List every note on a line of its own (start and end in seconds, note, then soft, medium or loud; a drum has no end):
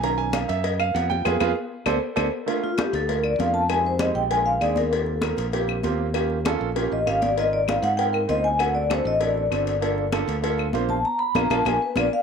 0.00 0.43 B1 loud
0.00 0.46 D#3 medium
0.00 0.47 A#3 medium
0.00 0.47 C#4 medium
0.00 0.18 A#5 loud
0.00 cowbell loud
0.00 high conga soft
0.18 0.33 G#5 loud
0.18 high conga soft
0.33 0.48 F5 medium
0.33 cowbell medium
0.33 high conga loud
0.33 claves medium
0.49 0.92 F#2 loud
0.49 0.64 E5 loud
0.49 cowbell medium
0.49 high conga soft
0.64 0.79 D#5 medium
0.64 cowbell loud
0.64 high conga soft
0.80 0.94 F5 loud
0.80 high conga soft
0.80 claves medium
0.94 1.23 F2 loud
0.94 1.09 F#5 loud
0.94 cowbell medium
0.94 high conga medium
1.10 1.25 G5 loud
1.10 high conga medium
1.25 1.37 F2 loud
1.25 1.35 F4 medium
1.25 1.35 G#4 loud
1.25 1.35 B4 medium
1.25 cowbell loud
1.25 high conga loud
1.25 claves loud
1.40 1.52 F2 loud
1.40 1.50 F4 loud
1.40 1.50 G#4 loud
1.40 1.50 B4 loud
1.40 cowbell loud
1.40 high conga loud
1.40 claves medium
1.86 1.98 D2 loud
1.86 1.96 A4 medium
1.86 1.96 C5 loud
1.86 1.96 D5 loud
1.86 cowbell loud
1.86 high conga medium
1.86 claves loud
2.16 2.28 D2 loud
2.16 2.26 A4 medium
2.16 2.26 C5 medium
2.16 2.26 D5 medium
2.16 cowbell loud
2.16 high conga medium
2.16 claves loud
2.46 2.68 A3 medium
2.46 2.69 A#3 medium
2.46 2.69 D4 medium
2.46 2.69 F4 loud
2.46 cowbell loud
2.46 high conga soft
2.64 2.78 F4 medium
2.64 high conga soft
2.77 2.99 A3 medium
2.77 2.99 A#3 medium
2.77 3.00 D4 medium
2.77 3.00 F4 medium
2.77 2.94 G4 medium
2.77 cowbell medium
2.77 high conga loud
2.77 claves medium
2.93 3.36 D2 loud
2.93 3.09 A4 medium
2.93 cowbell medium
2.93 high conga soft
3.08 3.30 A3 medium
3.08 3.30 A#3 medium
3.08 3.30 D4 medium
3.08 3.30 F4 medium
3.08 3.25 A#4 medium
3.08 cowbell loud
3.08 high conga soft
3.24 3.39 D5 medium
3.24 high conga soft
3.24 claves medium
3.38 4.10 F2 medium
3.38 3.60 A3 medium
3.38 3.61 A#3 medium
3.38 3.61 D4 medium
3.38 3.61 F4 medium
3.38 3.54 F5 medium
3.38 cowbell medium
3.38 high conga medium
3.54 3.69 A5 medium
3.68 3.91 G#3 medium
3.68 3.91 C4 medium
3.68 3.91 D#4 medium
3.68 3.91 G4 medium
3.68 3.84 G#5 loud
3.68 cowbell loud
3.68 high conga soft
3.68 claves medium
3.85 4.01 C5 medium
3.85 high conga soft
3.99 4.21 G#3 medium
3.99 4.22 C4 medium
3.99 4.22 D#4 medium
3.99 4.22 G4 medium
3.99 4.16 D#5 medium
3.99 cowbell medium
3.99 high conga loud
3.99 claves medium
4.15 4.58 A#1 loud
4.15 4.30 G5 loud
4.15 high conga soft
4.30 4.52 G#3 medium
4.30 4.52 C4 medium
4.30 4.52 D4 medium
4.30 4.53 F4 medium
4.30 4.46 G#5 loud
4.30 cowbell loud
4.30 high conga soft
4.46 4.61 F5 medium
4.46 high conga soft
4.60 5.32 D#2 medium
4.60 4.82 G#3 medium
4.60 4.83 C4 medium
4.60 4.83 D4 medium
4.60 4.83 G#4 medium
4.60 4.76 D5 medium
4.60 cowbell medium
4.60 high conga soft
4.60 claves medium
4.76 4.92 A#4 medium
4.76 cowbell medium
4.76 high conga medium
4.90 5.13 A#3 medium
4.90 5.13 C4 medium
4.90 5.13 F4 medium
4.90 5.13 G4 medium
4.90 5.35 A4 medium
4.90 cowbell loud
4.90 high conga soft
5.06 high conga soft
5.22 5.44 A#3 medium
5.22 5.44 C4 medium
5.22 5.44 F4 medium
5.22 5.44 A#4 medium
5.22 cowbell medium
5.22 high conga loud
5.22 claves medium
5.37 5.81 A#1 medium
5.37 cowbell medium
5.37 high conga soft
5.53 5.75 A#3 medium
5.53 5.75 C4 medium
5.53 5.75 F4 medium
5.53 5.75 G4 loud
5.53 cowbell loud
5.53 high conga soft
5.68 high conga soft
5.68 claves medium
5.83 6.55 D#2 loud
5.83 6.05 A#3 medium
5.83 6.05 C4 medium
5.83 6.06 F4 medium
5.83 6.06 G4 medium
5.83 cowbell medium
5.83 high conga medium
6.14 6.36 A#3 medium
6.14 6.36 C#4 medium
6.14 6.37 F4 medium
6.14 6.37 G4 medium
6.14 cowbell loud
6.14 high conga soft
6.14 claves medium
6.30 high conga soft
6.45 6.67 A#3 medium
6.45 6.67 C#4 medium
6.45 6.67 F4 loud
6.45 6.67 A4 loud
6.45 cowbell medium
6.45 high conga loud
6.45 claves medium
6.61 6.89 A#1 medium
6.61 high conga soft
6.75 6.97 A#3 medium
6.75 6.97 C#4 medium
6.75 6.98 F4 medium
6.75 6.98 G4 loud
6.75 cowbell loud
6.75 high conga soft
6.92 7.06 A1 medium
6.92 7.07 D#5 medium
6.92 high conga soft
7.06 7.78 G#1 medium
7.06 7.27 A#3 medium
7.06 7.28 C#4 medium
7.06 7.28 F4 medium
7.06 7.28 G4 medium
7.06 7.22 F5 loud
7.06 cowbell medium
7.06 high conga soft
7.06 claves medium
7.22 7.37 D5 medium
7.22 cowbell medium
7.22 high conga medium
7.36 7.58 C4 medium
7.36 7.58 D#4 medium
7.36 7.58 F4 medium
7.36 7.59 A#4 medium
7.36 7.53 D#5 loud
7.36 cowbell loud
7.36 high conga soft
7.53 7.68 D5 medium
7.53 high conga soft
7.67 7.89 C4 medium
7.67 7.89 D#4 medium
7.67 7.89 F4 medium
7.67 7.89 A#4 medium
7.67 7.83 F5 medium
7.67 cowbell medium
7.67 high conga loud
7.67 claves medium
7.82 8.25 G#2 loud
7.82 7.98 F#5 loud
7.82 cowbell medium
7.82 high conga soft
7.97 8.19 C4 medium
7.97 8.20 D#4 medium
7.97 8.20 F4 medium
7.97 8.20 A#4 medium
7.97 8.13 G5 loud
7.97 cowbell loud
7.97 high conga soft
8.13 8.28 A#4 medium
8.13 high conga soft
8.13 claves medium
8.28 9.00 D2 medium
8.28 8.50 C4 medium
8.28 8.50 D#4 medium
8.28 8.50 F4 medium
8.28 8.51 C5 medium
8.28 8.44 D#5 medium
8.28 cowbell medium
8.28 high conga medium
8.44 8.59 G#5 loud
8.59 8.81 C4 medium
8.59 8.81 D4 medium
8.59 8.81 F#4 medium
8.59 8.81 A4 medium
8.59 8.74 F#5 medium
8.59 cowbell loud
8.59 high conga soft
8.59 claves medium
8.75 8.90 D5 medium
8.75 high conga soft
8.89 9.11 C4 medium
8.89 9.11 D4 medium
8.89 9.11 F#4 medium
8.89 9.12 A4 medium
8.89 9.06 C5 medium
8.89 cowbell medium
8.89 high conga loud
8.89 claves medium
9.05 9.48 A1 loud
9.05 9.21 D#5 loud
9.05 high conga soft
9.19 9.42 C4 medium
9.19 9.42 D4 medium
9.19 9.42 F#4 medium
9.19 9.42 A4 medium
9.19 10.09 D5 medium
9.19 cowbell loud
9.19 high conga soft
9.37 high conga soft
9.51 10.23 G1 loud
9.51 9.72 C4 medium
9.51 9.73 D4 medium
9.51 9.73 F#4 medium
9.51 9.73 A4 medium
9.51 cowbell medium
9.51 high conga soft
9.51 claves medium
9.67 cowbell medium
9.81 10.03 A#3 medium
9.81 10.03 D4 medium
9.81 10.03 F4 medium
9.81 10.04 A4 medium
9.81 cowbell loud
9.81 high conga soft
9.98 high conga soft
10.12 10.34 A#3 medium
10.12 10.34 D4 medium
10.12 10.34 F4 medium
10.12 10.34 A4 loud
10.12 cowbell medium
10.12 high conga loud
10.12 claves medium
10.28 10.71 D2 loud
10.28 cowbell medium
10.28 high conga soft
10.42 10.64 A#3 medium
10.42 10.64 D4 medium
10.42 10.65 F4 medium
10.42 10.65 A4 loud
10.42 cowbell loud
10.42 high conga soft
10.58 high conga soft
10.58 claves medium
10.73 11.02 A#1 loud
10.73 10.95 A#3 medium
10.73 10.95 D4 medium
10.73 10.95 F4 medium
10.73 10.96 C5 loud
10.73 cowbell medium
10.73 high conga medium
10.89 11.04 A5 loud
10.89 high conga medium
11.05 11.20 A#5 loud
11.19 11.34 B5 loud
11.35 11.46 A#1 loud
11.35 11.45 A#3 medium
11.35 11.45 D4 loud
11.35 11.45 F4 loud
11.35 11.50 A#5 loud
11.35 cowbell loud
11.35 high conga loud
11.35 claves loud
11.50 11.62 A#1 loud
11.50 11.60 A#3 loud
11.50 11.60 D4 loud
11.50 11.61 F4 loud
11.50 11.66 A5 loud
11.50 cowbell loud
11.50 high conga loud
11.50 claves loud
11.65 11.77 A#1 loud
11.65 11.76 A#3 loud
11.65 11.76 D4 medium
11.65 11.76 F4 medium
11.65 11.81 G#5 medium
11.65 cowbell loud
11.65 high conga medium
11.65 claves medium
11.82 11.97 B4 medium
11.96 12.08 A#1 loud
11.96 12.06 A#3 medium
11.96 12.06 D4 loud
11.96 12.06 F4 medium
11.96 12.13 D5 medium
11.96 cowbell loud
11.96 high conga loud
11.96 claves loud
12.13 12.22 F5 loud